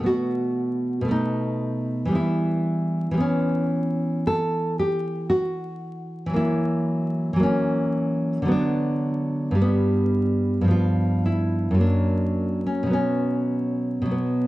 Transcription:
Already playing: B2
0.00 A3 B3
0.06 F#4
1.01 B2 A3
1.08 B3 D#4
2.05 E3 G3
2.11 B3 E4
3.11 E3 G3
3.17 B3 C#4
4.27 A4
4.79 G4
5.30 F#4
6.26 E3 F#3
6.33 A#3 E4
7.33 E3 F#3
7.40 A#3 C#4
8.42 D3 F#3
8.48 B3 D4
9.51 G2 G3
9.61 B3
10.61 G2 F3
10.68 B3 F4
11.26 E4
11.71 F#2 F#3
11.78 A#3 D4
12.66 C#4
12.83 B2 F#3
12.90 B3 C#4
14.02 B2 F#3
14.11 B3

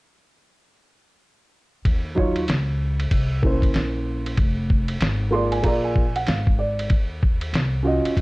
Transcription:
1.85 D#2, kick, ride
2.15 F#3 D#4 F4 C#5, kick
2.36 ride
2.48 C#2, snare, hi-hat pedal, ride
3.00 ride
3.11 C2, kick, ride
3.42 A#3 C#4 E4 C5, kick
3.62 kick, ride
3.74 A#1, snare, hi-hat pedal, ride
4.26 ride
4.37 F1, kick, ride
4.70 kick
4.88 ride
5.01 G#1, snare, hi-hat pedal, ride
5.31 A#3 F4 G#4 D5 C6
5.52 G#5, ride
5.62 A#1 A#3 F4 G#4 A#5, kick, ride
5.67 D5
5.84 G#5
5.96 kick
6.16 F#5, ride
6.27 G#1 F5, snare, hi-hat pedal, ride
6.47 kick
6.59 D5
6.79 ride
6.90 D#2, kick, ride
7.23 kick
7.41 ride
7.53 C2, snare, hi-hat pedal, ride
7.83 C#4 F4 F#4
7.87 D#5
8.05 muted upright bass stroke, ride
8.17 A#1, kick, ride

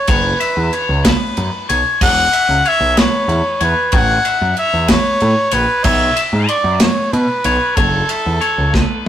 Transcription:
Already playing: C#5
0.07 F#1 B4 C#5, kick, ride
0.40 E5, ride
0.57 E2
0.73 C#5, ride
0.89 C#2
1.05 B4, kick, snare, ride
1.37 F#2, ride
1.69 B1 C#5, ride
2.01 E1 D5 F#5, kick, crash
2.33 E5, ride
2.49 C#2
2.65 C#5 E5, ride
2.80 B1
2.97 B4 C#5, snare, ride
3.28 E2, ride
3.61 E2 B4 C#5, ride
3.92 A1 C#5 F#5, kick, ride
4.25 E5, ride
4.41 F#2
4.57 C#5 E5, ride
4.73 E2
4.88 B4 C#5, kick, snare, ride
5.20 A2, ride
5.51 A#1 B4 C#5, ride
5.84 B1 C#5 E5, kick, crash
6.16 E5, ride
6.33 G#2
6.48 D5 C#6, ride
6.64 F#2
6.80 B4 C#5, snare, ride
7.13 B2 B4, ride
7.44 B1 C#5, ride
7.76 F#1 A4 C#5, kick, ride
8.09 E5, ride
8.26 E2
8.41 C#5, ride
8.58 C#2
8.74 B4, kick, snare

